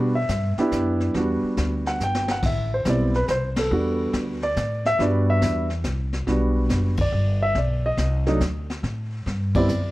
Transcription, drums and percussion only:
0.29 kick, snare, hi-hat pedal
0.58 snare
0.72 kick, snare, hi-hat pedal
1.00 snare
1.14 brush sweep, kick, snare
1.57 kick, snare, hi-hat pedal
1.86 snare
2.00 snare, hi-hat pedal
2.15 snare
2.28 snare
2.42 brush sweep, kick, snare, crash
2.85 kick, snare, hi-hat pedal
3.14 snare
3.28 kick, snare, hi-hat pedal
3.56 snare, ride
3.71 brush sweep
4.13 kick, snare, hi-hat pedal
4.42 snare
4.56 kick, snare, hi-hat pedal
4.85 snare
4.99 brush sweep, kick, snare
5.41 kick, snare, hi-hat pedal
5.70 snare
5.83 kick, snare, hi-hat pedal
6.13 snare
6.27 brush sweep, kick, snare
6.70 kick, snare, hi-hat pedal
6.97 kick, ride
7.55 brush sweep, kick, snare
7.98 kick, snare, hi-hat pedal
8.26 snare
8.40 kick, snare, hi-hat pedal
8.70 snare
8.83 brush sweep, kick, snare
9.26 kick, snare
9.55 kick, ride
9.68 hi-hat pedal

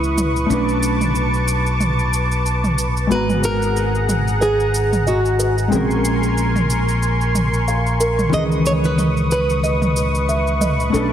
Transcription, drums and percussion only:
0.04 cabasa
0.18 mid tom, cabasa
0.36 cabasa
0.50 cabasa
0.69 cabasa
0.83 cabasa
1.01 mid tom, cabasa
1.15 cabasa
1.34 cabasa
1.48 cabasa
1.66 cabasa
1.80 mid tom, cabasa
1.99 cabasa
2.13 cabasa
2.32 cabasa
2.46 cabasa
2.64 mid tom, cabasa
2.78 cabasa
2.97 cabasa
3.11 cabasa
3.29 mid tom, cabasa
3.44 cabasa
3.62 cabasa
3.77 cabasa
3.95 cabasa
4.09 mid tom, cabasa
4.28 cabasa
4.42 cabasa
4.60 cabasa
4.74 cabasa
4.93 mid tom, cabasa
5.07 cabasa
5.25 cabasa
5.40 cabasa
5.58 cabasa
5.72 mid tom, cabasa
5.91 cabasa
6.05 cabasa
6.23 cabasa
6.38 cabasa
6.56 mid tom, cabasa
6.70 cabasa
6.89 cabasa
7.03 cabasa
7.21 cabasa
7.35 mid tom, cabasa
7.54 cabasa
7.68 cabasa
7.86 cabasa
8.01 cabasa
8.19 mid tom, cabasa
8.33 cabasa
8.52 cabasa
8.66 cabasa
8.84 cabasa
8.98 mid tom, cabasa
9.17 cabasa
9.31 cabasa
9.50 cabasa
9.64 cabasa
9.82 mid tom, cabasa
9.96 cabasa
10.15 cabasa
10.29 cabasa
10.47 cabasa
10.61 mid tom, cabasa
10.80 cabasa
10.94 cabasa

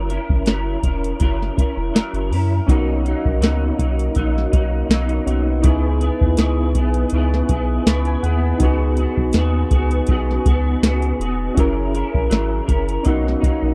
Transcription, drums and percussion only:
0.10 closed hi-hat
0.30 kick
0.46 snare, closed hi-hat
0.83 kick, closed hi-hat
1.04 closed hi-hat
1.20 kick, closed hi-hat
1.42 snare
1.58 kick, closed hi-hat
1.96 snare, closed hi-hat
2.14 closed hi-hat
2.33 open hi-hat
2.68 kick, closed hi-hat
3.06 closed hi-hat
3.26 kick
3.42 snare, closed hi-hat
3.79 kick, closed hi-hat
3.99 closed hi-hat
4.15 kick, closed hi-hat
4.38 snare
4.53 kick, closed hi-hat
4.91 snare, closed hi-hat
5.09 closed hi-hat
5.27 closed hi-hat
5.64 kick, closed hi-hat
6.01 closed hi-hat
6.21 kick
6.37 snare, closed hi-hat
6.75 kick, closed hi-hat
6.94 closed hi-hat
7.10 closed hi-hat
7.34 snare
7.49 kick, closed hi-hat
7.87 snare, closed hi-hat
8.05 closed hi-hat
8.24 closed hi-hat
8.60 kick, closed hi-hat
8.97 closed hi-hat
9.17 kick
9.33 snare, closed hi-hat
9.71 kick, closed hi-hat
9.91 closed hi-hat
10.07 kick, closed hi-hat
10.31 snare
10.46 kick, closed hi-hat
10.83 snare, closed hi-hat
11.02 closed hi-hat
11.21 closed hi-hat
11.57 kick, closed hi-hat
11.95 closed hi-hat
12.15 kick
12.31 snare, closed hi-hat
12.68 kick, closed hi-hat
12.89 closed hi-hat
13.05 kick, closed hi-hat
13.28 snare
13.43 kick, closed hi-hat

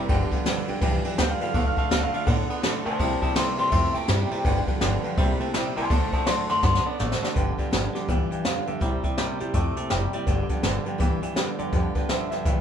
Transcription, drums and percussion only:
0.09 kick, ride
0.32 kick, ride
0.46 snare, ride
0.68 ride
0.82 kick, ride
1.04 ride
1.18 snare, ride
1.41 ride
1.54 kick, ride
1.77 kick, ride
1.91 snare, ride
2.14 ride
2.27 kick, ride
2.50 ride
2.63 snare, ride
2.86 ride
3.00 kick, ride
3.22 kick, ride
3.36 snare, ride
3.58 ride
3.72 kick, ride
3.95 ride
4.08 snare, ride
4.31 ride
4.45 kick, ride
4.67 kick, ride
4.81 snare, ride
5.04 ride
5.18 kick, ride
5.40 ride
5.54 snare, ride
5.77 ride
5.90 kick, ride
6.13 kick, ride
6.26 snare, ride
6.49 snare, ride
6.63 kick, snare
6.75 snare
6.99 snare
7.12 snare
7.24 snare
7.36 kick, closed hi-hat
7.58 kick, closed hi-hat
7.73 snare, closed hi-hat
7.95 snare, closed hi-hat
8.09 kick, closed hi-hat
8.32 closed hi-hat
8.45 snare, closed hi-hat
8.67 closed hi-hat
8.81 kick, closed hi-hat
9.04 kick, closed hi-hat
9.18 snare, closed hi-hat
9.40 closed hi-hat
9.54 kick, closed hi-hat
9.76 closed hi-hat
9.90 snare, closed hi-hat
10.13 closed hi-hat
10.27 kick, closed hi-hat
10.49 kick, closed hi-hat
10.63 snare, closed hi-hat
10.86 closed hi-hat
11.00 kick, closed hi-hat
11.22 closed hi-hat
11.36 snare, closed hi-hat
11.59 closed hi-hat
11.73 kick, closed hi-hat
11.95 kick, closed hi-hat
12.09 snare, closed hi-hat
12.32 snare, closed hi-hat
12.45 kick, closed hi-hat

